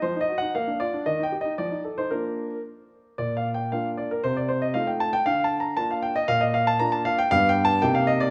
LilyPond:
\new Staff \with { instrumentName = "Grand piano" } { \time 2/4 \key bes \major \tempo 4 = 116 << { \tuplet 3/2 { c''8 ees''8 ges''8 } f''8 d''8 | \tuplet 3/2 { ees''8 g''8 ees''8 } d''8. c''16 | bes'4. r8 | \tuplet 3/2 { d''8 f''8 g''8 } f''8 d''16 bes'16 |
c''16 d''16 c''16 ees''16 f''16 g''16 a''16 g''16 | \tuplet 3/2 { f''8 a''8 bes''8 } a''16 f''16 g''16 ees''16 | f''16 ees''16 f''16 a''16 bes''16 a''16 f''16 g''16 | \tuplet 3/2 { f''8 g''8 a''8 } g''16 f''16 ees''16 d''16 | } \\ { f16 ees'16 ges'16 ees'16 bes16 d'16 f'16 d'16 | ees16 ees'16 g'16 ees'16 f16 ees'16 a'16 ees'16 | <bes d' f'>4 r4 | bes,4 <bes d' f'>4 |
c4 <a ees' f'>4 | d4 <bes d' f'>4 | bes,4 <bes d' f'>4 | <g, b d' g'>4 <c bes ees' g'>4 | } >> }